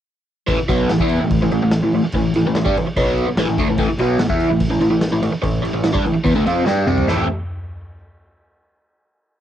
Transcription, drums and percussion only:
0.48 kick, crash
0.69 kick, crash
0.89 snare, crash
1.00 kick
1.09 crash
1.31 kick, crash
1.51 crash
1.71 snare, crash
1.93 crash
2.12 kick, crash
2.34 crash
2.55 snare, crash
2.66 kick
2.77 crash
2.96 kick, crash
3.18 crash
3.37 snare, crash
3.58 kick, crash
3.78 kick, crash
3.98 crash
4.19 snare, crash
4.30 kick
4.40 crash
4.60 kick, crash
4.81 crash
5.01 snare, crash
5.23 crash
5.43 kick, crash
5.65 crash
5.84 snare, crash
5.95 kick
6.06 crash
6.26 kick, crash
6.47 crash
6.67 snare
6.88 mid tom
6.98 floor tom
7.08 snare

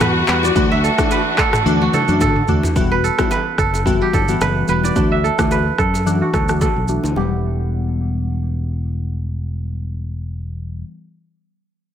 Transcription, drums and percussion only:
0.01 cross-stick, mid tom, high bongo, shaker
0.27 clap, shaker
0.43 low bongo, shaker
0.56 kick, low conga, shaker
0.84 shaker
0.98 kick, cross-stick, low bongo, shaker
1.11 high bongo, shaker
1.38 kick, cross-stick, clap, shaker
1.53 cross-stick, mid tom, high bongo, shaker
1.66 high tom, low conga, shaker
1.93 mid tom, low bongo, low conga, shaker
2.08 shaker
2.21 kick, mid tom, high bongo, shaker
2.36 mid tom
2.48 floor tom, shaker
2.63 floor tom, low bongo, shaker
2.76 kick, low conga, shaker
3.05 shaker
3.19 kick, cross-stick, low bongo, shaker
3.31 high bongo, shaker
3.58 kick, cross-stick, shaker
3.74 high bongo, shaker
3.86 kick, low conga, shaker
4.13 kick, low bongo, low conga, shaker
4.28 shaker
4.41 cross-stick, high bongo, shaker
4.68 shaker
4.83 low bongo, shaker
4.96 kick, low conga, shaker
5.25 shaker
5.39 kick, cross-stick, low bongo, shaker
5.51 high bongo, shaker
5.78 kick, cross-stick, shaker
5.94 high bongo, shaker
6.07 low conga, shaker
6.34 kick, cross-stick, low bongo, low conga, shaker
6.48 cross-stick, shaker
6.61 kick, high bongo, shaker
6.88 shaker
7.04 low bongo, shaker
7.16 low conga

